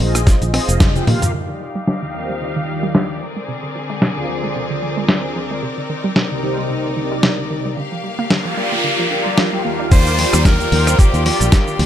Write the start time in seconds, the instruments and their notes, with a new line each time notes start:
0.00 fingered electric bass A#1, synth arpeggio sound G3, analog polysynth F4 G#4 C5 D#5, open hi-hat
0.15 synth arpeggio sound A#3, cross-stick, closed hi-hat, cabasa
0.27 synth arpeggio sound C3, kick, snare, closed hi-hat, cabasa
0.42 fingered electric bass A#1, synth arpeggio sound D#3, closed hi-hat, cabasa
0.53 synth arpeggio sound C4, analog polysynth F4 G#4 C5 D#5, cross-stick, open hi-hat
0.68 fingered electric bass F1, synth arpeggio sound A#3, closed hi-hat, cabasa
0.80 synth arpeggio sound C3, kick, snare, closed hi-hat, high tom, cabasa
0.95 synth arpeggio sound C4, analog polysynth F4 G#4 C5 G5, closed hi-hat, high tom, cabasa
1.07 fingered electric bass A#2, synth arpeggio sound D#3, analog polysynth F4 G4 A#4 F5, open hi-hat, mid tom
1.22 synth arpeggio sound C3, closed hi-hat, mid tom, cabasa
1.34 synth arpeggio sound D3, string section D#4 G4 D5 F5, crash
1.49 synth arpeggio sound D#3
1.61 synth arpeggio sound F3
1.75 synth arpeggio sound G3
1.87 synth arpeggio sound D3, snare
2.02 analog polysynth D#3 F4 G4 A#4 D5, synth arpeggio sound D#3
2.14 analog polysynth D#3 F4 G4 A#4 C5, synth arpeggio sound F3
2.29 synth arpeggio sound G3
2.41 synth arpeggio sound D3
2.56 synth arpeggio sound D#3
2.68 analog polysynth D#3 F4 G4, synth arpeggio sound F3
2.83 synth arpeggio sound G3
2.95 synth arpeggio sound D3, snare
3.10 synth arpeggio sound D#3
3.21 string section D3 C4 G#4 A#4, synth arpeggio sound F3
3.36 synth arpeggio sound G#3
3.48 synth arpeggio sound C3
3.63 synth arpeggio sound D3
3.75 synth arpeggio sound F3
3.90 synth arpeggio sound G#3
4.02 synth arpeggio sound C3, snare
4.16 synth arpeggio sound D3, analog polysynth D3 F4 G#4 C5 F5
4.28 analog polysynth D3 F4 G#4 C5 D5, synth arpeggio sound F3
4.44 synth arpeggio sound G#3
4.56 synth arpeggio sound C3
4.70 synth arpeggio sound D3
4.82 synth arpeggio sound F3
4.97 synth arpeggio sound G#3
5.09 synth arpeggio sound C3, snare
5.24 synth arpeggio sound D3
5.36 synth arpeggio sound F3
5.51 synth arpeggio sound G#3
5.63 synth arpeggio sound C3, string section D#4
5.78 synth arpeggio sound D3
5.90 synth arpeggio sound D#3
6.04 synth arpeggio sound G3
6.16 synth arpeggio sound C3, snare
6.31 analog polysynth C3 D#4 G4 A#4 D5, synth arpeggio sound D3
6.42 analog polysynth C3 D#4 G4 A#4 C5, synth arpeggio sound D#3
6.58 synth arpeggio sound G3
6.70 synth arpeggio sound C3
6.85 synth arpeggio sound D3
6.96 analog polysynth C3 D#4 G4 A#4 D5, synth arpeggio sound D#3
7.12 synth arpeggio sound G3
7.23 synth arpeggio sound C3, snare
7.38 synth arpeggio sound D3
7.51 synth arpeggio sound D#3
7.65 synth arpeggio sound G3
7.77 synth arpeggio sound D3, string section A#3 G4 F5, noise sweep
7.92 synth arpeggio sound F3
8.04 synth arpeggio sound G3
8.19 synth arpeggio sound A#3
8.30 synth arpeggio sound D3, snare
8.45 synth arpeggio sound F3, analog polysynth F4 G4 A#4 F5
8.57 synth arpeggio sound G3, analog polysynth F4 G4 A#4 D5
8.72 synth arpeggio sound A#3
8.84 synth arpeggio sound D3
8.99 synth arpeggio sound F3
9.11 synth arpeggio sound D3, analog polysynth F4 G4 A#4 D5
9.26 synth arpeggio sound G3
9.38 synth arpeggio sound F3, snare
9.52 synth arpeggio sound G3, analog polysynth F4 G4 A#4 G5
9.64 analog polysynth D#3 F4 G4 A#4 F5, synth arpeggio sound A#3
9.80 synth arpeggio sound D4
9.90 fingered electric bass D#2, synth arpeggio sound D3, analog polysynth F4 G4 A#4 D5, string section F4 D5 G5, tenor saxophone C5, kick, closed hi-hat, crash, downlifter, cabasa
10.06 synth arpeggio sound D#3, cabasa
10.18 synth arpeggio sound F3, open hi-hat
10.33 fingered electric bass D#2, synth arpeggio sound G3, cross-stick, closed hi-hat, cabasa
10.45 synth arpeggio sound D3, tenor saxophone A#4, kick, snare, closed hi-hat, cabasa
10.59 synth arpeggio sound D#3, analog polysynth F4 G4 A#4 D5, closed hi-hat, cabasa
10.71 fingered electric bass D#2, synth arpeggio sound F3, analog polysynth F4 G4 A#4 C5, open hi-hat
10.87 synth arpeggio sound G3, cross-stick, closed hi-hat, cabasa
10.99 synth arpeggio sound D3, tenor saxophone G4, muted fingered electric bass stroke, kick, closed hi-hat, cabasa
11.14 fingered electric bass D#2, synth arpeggio sound D#3, closed hi-hat, cabasa
11.25 synth arpeggio sound F3, analog polysynth F4 G4 A#4 D5, tenor saxophone G4, open hi-hat
11.40 fingered electric bass A#1, synth arpeggio sound G3, closed hi-hat, cabasa
11.52 synth arpeggio sound D3, kick, snare, closed hi-hat, cabasa
11.67 synth arpeggio sound D#3, cabasa
11.79 fingered electric bass D2, synth arpeggio sound F3, string section G#4 D5 C6, open hi-hat